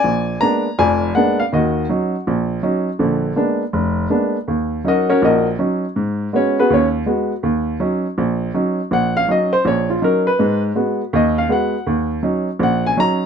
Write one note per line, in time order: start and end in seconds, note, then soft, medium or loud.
0.00 0.61 D5 medium
0.00 0.42 G#5 loud
0.04 0.36 A#1 medium
0.41 0.66 G#3 soft
0.41 0.66 A#3 soft
0.41 0.67 B3 soft
0.41 0.67 D4 medium
0.41 0.79 A#5 medium
0.78 1.10 F1 medium
0.78 1.10 F2 medium
0.78 1.49 D5 medium
0.78 1.13 G#5 medium
1.15 1.41 G#3 soft
1.15 1.41 A#3 soft
1.15 1.41 B3 soft
1.15 1.41 D4 medium
1.15 1.37 F#5 medium
1.39 1.44 F5 medium
1.53 1.84 D#2 medium
1.53 1.84 D#3 medium
1.53 2.23 F#4 medium
1.53 1.87 D#5 medium
1.89 2.14 F#3 soft
1.89 2.15 C#4 soft
1.89 2.15 D#4 soft
2.27 2.58 A#1 medium
2.63 2.88 F#3 soft
2.63 2.88 C#4 soft
2.63 2.88 D#4 medium
2.99 3.31 A#1 medium
2.99 3.31 D3 medium
3.36 3.62 G#3 soft
3.36 3.61 A#3 soft
3.36 3.62 B3 soft
3.36 3.62 D4 medium
3.73 4.05 F1 medium
4.10 4.35 G#3 soft
4.10 4.35 A#3 soft
4.10 4.36 B3 soft
4.10 4.36 D4 medium
4.48 4.79 D#2 medium
4.84 5.10 F#3 soft
4.84 5.08 C#4 soft
4.84 4.87 D#4 soft
4.84 5.10 D#4 medium
4.84 5.08 A#4 medium
4.84 5.09 D#5 medium
4.89 5.09 F#4 medium
5.10 5.22 C#4 medium
5.10 5.22 F#4 medium
5.10 5.22 A#4 medium
5.10 5.21 C#5 medium
5.22 5.54 A#1 medium
5.22 5.46 D#4 medium
5.22 5.46 F#4 medium
5.22 5.46 A#4 medium
5.22 5.46 D#5 medium
5.59 5.84 F#3 soft
5.59 5.84 C#4 soft
5.59 5.84 D#4 medium
5.96 6.27 G#2 medium
6.33 6.58 G#3 soft
6.33 6.58 B3 soft
6.33 6.57 C#4 medium
6.33 6.58 F#4 soft
6.33 6.57 C#5 medium
6.59 6.71 B3 medium
6.59 6.71 F#4 medium
6.59 6.70 G#4 medium
6.59 6.70 B4 medium
6.70 7.01 D#2 medium
6.70 6.87 C#5 medium
6.74 6.87 C#4 medium
7.06 7.31 G#3 soft
7.06 7.32 B3 soft
7.06 7.32 F#4 medium
7.43 7.75 D#2 medium
7.80 8.05 F#3 soft
7.80 8.05 C#4 soft
7.80 8.05 D#4 soft
8.18 8.49 A#1 medium
8.54 8.79 F#3 soft
8.54 8.79 C#4 soft
8.54 8.80 D#4 soft
8.91 9.23 A#1 medium
8.91 9.15 F#5 medium
9.17 9.28 F5 medium
9.28 9.53 F#3 soft
9.28 9.53 C#4 soft
9.28 9.53 D#4 soft
9.28 9.53 D#5 medium
9.53 9.65 C5 medium
9.65 9.96 A#1 medium
9.65 9.89 C#5 medium
9.90 10.02 F4 soft
10.02 10.27 F#3 soft
10.02 10.27 C#4 soft
10.02 10.27 D#4 medium
10.02 10.26 A#4 medium
10.27 10.60 B4 medium
10.39 10.71 G#2 medium
10.39 10.70 G#3 medium
10.76 11.00 G#3 soft
10.76 11.01 B3 soft
10.76 11.01 F#4 soft
11.13 11.44 D#2 medium
11.13 11.37 D#5 medium
11.38 11.49 F5 medium
11.49 11.74 G#3 medium
11.49 11.74 B3 soft
11.49 11.74 F#4 soft
11.49 12.07 F#5 medium
11.87 12.18 D#2 medium
12.23 12.48 F#3 soft
12.23 12.48 C#4 soft
12.23 12.48 D#4 medium
12.59 12.91 A#1 medium
12.59 12.84 F#5 medium
12.86 12.97 G#5 medium
12.97 13.22 F#3 medium
12.97 13.22 C#4 soft
12.97 13.22 D#4 soft
12.97 13.26 A#5 medium